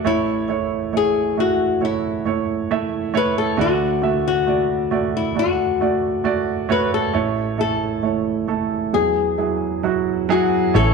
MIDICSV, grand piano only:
0, 0, Header, 1, 2, 480
1, 0, Start_track
1, 0, Key_signature, 3, "major"
1, 0, Tempo, 886263
1, 31, Time_signature, 4, 2, 24, 8
1, 4350, Tempo, 906344
1, 5890, End_track
2, 0, Start_track
2, 0, Title_t, "Grand piano"
2, 0, Program_c, 0, 0
2, 0, Control_c, 0, 64, 127
2, 25, Note_on_c, 0, 57, 76
2, 27, Note_on_c, 0, 64, 62
2, 28, Note_on_c, 0, 33, 47
2, 29, Note_on_c, 0, 45, 51
2, 31, Note_on_c, 0, 73, 82
2, 39, Control_c, 0, 64, 0
2, 116, Control_c, 0, 64, 127
2, 253, Note_off_c, 0, 57, 0
2, 256, Note_off_c, 0, 64, 0
2, 260, Note_off_c, 0, 73, 0
2, 261, Note_on_c, 0, 57, 55
2, 264, Note_on_c, 0, 64, 53
2, 269, Note_on_c, 0, 73, 62
2, 495, Note_off_c, 0, 57, 0
2, 496, Note_off_c, 0, 64, 0
2, 499, Note_off_c, 0, 73, 0
2, 503, Note_on_c, 0, 57, 55
2, 506, Note_on_c, 0, 64, 52
2, 507, Note_on_c, 0, 73, 57
2, 736, Note_off_c, 0, 57, 0
2, 737, Note_off_c, 0, 64, 0
2, 737, Note_off_c, 0, 73, 0
2, 745, Note_on_c, 0, 57, 59
2, 748, Note_on_c, 0, 64, 54
2, 751, Note_on_c, 0, 66, 64
2, 971, Note_off_c, 0, 57, 0
2, 975, Note_off_c, 0, 64, 0
2, 979, Note_off_c, 0, 66, 0
2, 979, Note_on_c, 0, 57, 52
2, 983, Note_on_c, 0, 64, 52
2, 983, Note_on_c, 0, 73, 60
2, 1213, Note_off_c, 0, 57, 0
2, 1215, Note_off_c, 0, 64, 0
2, 1215, Note_off_c, 0, 73, 0
2, 1221, Note_on_c, 0, 57, 59
2, 1224, Note_on_c, 0, 64, 56
2, 1226, Note_on_c, 0, 73, 66
2, 1454, Note_off_c, 0, 57, 0
2, 1455, Note_off_c, 0, 64, 0
2, 1456, Note_off_c, 0, 73, 0
2, 1467, Note_on_c, 0, 57, 75
2, 1469, Note_on_c, 0, 64, 68
2, 1470, Note_on_c, 0, 76, 80
2, 1691, Note_off_c, 0, 57, 0
2, 1694, Note_off_c, 0, 64, 0
2, 1698, Note_off_c, 0, 76, 0
2, 1699, Note_on_c, 0, 57, 80
2, 1702, Note_on_c, 0, 64, 73
2, 1704, Note_on_c, 0, 73, 92
2, 1925, Note_off_c, 0, 33, 0
2, 1926, Note_off_c, 0, 45, 0
2, 1926, Note_off_c, 0, 57, 0
2, 1932, Note_off_c, 0, 64, 0
2, 1934, Note_off_c, 0, 73, 0
2, 1934, Note_on_c, 0, 57, 78
2, 1937, Note_on_c, 0, 38, 50
2, 1938, Note_on_c, 0, 66, 72
2, 1939, Note_on_c, 0, 50, 52
2, 1942, Note_on_c, 0, 74, 82
2, 1955, Control_c, 0, 64, 0
2, 2066, Control_c, 0, 64, 127
2, 2168, Note_off_c, 0, 57, 0
2, 2170, Note_off_c, 0, 66, 0
2, 2172, Note_off_c, 0, 74, 0
2, 2177, Note_on_c, 0, 57, 61
2, 2180, Note_on_c, 0, 66, 57
2, 2185, Note_on_c, 0, 76, 71
2, 2410, Note_off_c, 0, 57, 0
2, 2412, Note_off_c, 0, 66, 0
2, 2414, Note_off_c, 0, 76, 0
2, 2419, Note_on_c, 0, 57, 54
2, 2422, Note_on_c, 0, 66, 51
2, 2427, Note_on_c, 0, 74, 63
2, 2651, Note_off_c, 0, 57, 0
2, 2652, Note_off_c, 0, 66, 0
2, 2655, Note_off_c, 0, 74, 0
2, 2660, Note_on_c, 0, 57, 64
2, 2660, Note_on_c, 0, 66, 57
2, 2664, Note_on_c, 0, 74, 65
2, 2890, Note_off_c, 0, 57, 0
2, 2892, Note_off_c, 0, 66, 0
2, 2894, Note_off_c, 0, 74, 0
2, 2899, Note_on_c, 0, 57, 53
2, 2904, Note_on_c, 0, 66, 50
2, 2905, Note_on_c, 0, 74, 57
2, 3131, Note_off_c, 0, 57, 0
2, 3134, Note_off_c, 0, 66, 0
2, 3134, Note_off_c, 0, 74, 0
2, 3146, Note_on_c, 0, 57, 60
2, 3149, Note_on_c, 0, 66, 52
2, 3151, Note_on_c, 0, 74, 63
2, 3372, Note_off_c, 0, 57, 0
2, 3374, Note_off_c, 0, 66, 0
2, 3377, Note_off_c, 0, 74, 0
2, 3380, Note_on_c, 0, 57, 72
2, 3382, Note_on_c, 0, 66, 64
2, 3385, Note_on_c, 0, 74, 79
2, 3611, Note_off_c, 0, 57, 0
2, 3612, Note_off_c, 0, 66, 0
2, 3613, Note_off_c, 0, 74, 0
2, 3622, Note_on_c, 0, 57, 80
2, 3627, Note_on_c, 0, 66, 70
2, 3628, Note_on_c, 0, 73, 87
2, 3839, Note_off_c, 0, 38, 0
2, 3840, Note_off_c, 0, 50, 0
2, 3852, Note_off_c, 0, 57, 0
2, 3855, Note_off_c, 0, 66, 0
2, 3855, Note_off_c, 0, 73, 0
2, 3864, Note_on_c, 0, 57, 73
2, 3866, Note_on_c, 0, 64, 62
2, 3868, Note_on_c, 0, 45, 50
2, 3869, Note_on_c, 0, 33, 50
2, 3870, Note_on_c, 0, 73, 81
2, 3872, Control_c, 0, 64, 0
2, 3970, Control_c, 0, 64, 127
2, 4094, Note_off_c, 0, 57, 0
2, 4095, Note_off_c, 0, 64, 0
2, 4096, Note_off_c, 0, 73, 0
2, 4106, Note_on_c, 0, 57, 58
2, 4107, Note_on_c, 0, 64, 53
2, 4111, Note_on_c, 0, 69, 63
2, 4336, Note_off_c, 0, 57, 0
2, 4336, Note_off_c, 0, 64, 0
2, 4338, Note_off_c, 0, 69, 0
2, 4347, Note_on_c, 0, 57, 53
2, 4350, Note_on_c, 0, 64, 50
2, 4355, Note_on_c, 0, 73, 54
2, 4573, Note_off_c, 0, 57, 0
2, 4575, Note_off_c, 0, 64, 0
2, 4577, Note_off_c, 0, 73, 0
2, 4587, Note_on_c, 0, 57, 55
2, 4590, Note_on_c, 0, 69, 62
2, 4591, Note_on_c, 0, 64, 53
2, 4805, Note_off_c, 0, 45, 0
2, 4806, Note_off_c, 0, 33, 0
2, 4814, Note_off_c, 0, 57, 0
2, 4815, Note_off_c, 0, 69, 0
2, 4816, Note_off_c, 0, 64, 0
2, 4826, Note_on_c, 0, 40, 46
2, 4826, Note_on_c, 0, 54, 48
2, 4829, Note_on_c, 0, 64, 47
2, 4831, Control_c, 0, 64, 0
2, 4831, Note_on_c, 0, 68, 59
2, 4918, Control_c, 0, 64, 127
2, 5055, Note_off_c, 0, 54, 0
2, 5056, Note_off_c, 0, 64, 0
2, 5057, Note_off_c, 0, 68, 0
2, 5063, Note_on_c, 0, 54, 56
2, 5065, Note_on_c, 0, 64, 52
2, 5068, Note_on_c, 0, 68, 60
2, 5295, Note_off_c, 0, 54, 0
2, 5296, Note_off_c, 0, 64, 0
2, 5297, Note_off_c, 0, 68, 0
2, 5304, Note_on_c, 0, 54, 67
2, 5308, Note_on_c, 0, 64, 62
2, 5309, Note_on_c, 0, 66, 72
2, 5536, Note_off_c, 0, 54, 0
2, 5538, Note_off_c, 0, 64, 0
2, 5538, Note_off_c, 0, 66, 0
2, 5545, Note_on_c, 0, 54, 92
2, 5551, Note_on_c, 0, 64, 81
2, 5552, Note_on_c, 0, 68, 97
2, 5768, Note_off_c, 0, 40, 0
2, 5775, Note_off_c, 0, 54, 0
2, 5778, Note_off_c, 0, 64, 0
2, 5778, Note_off_c, 0, 68, 0
2, 5785, Note_on_c, 0, 57, 84
2, 5786, Note_on_c, 0, 64, 79
2, 5788, Note_on_c, 0, 45, 61
2, 5790, Note_on_c, 0, 73, 96
2, 5797, Control_c, 0, 64, 0
2, 5890, Note_off_c, 0, 45, 0
2, 5890, Note_off_c, 0, 57, 0
2, 5890, Note_off_c, 0, 64, 0
2, 5890, Note_off_c, 0, 73, 0
2, 5890, End_track
0, 0, End_of_file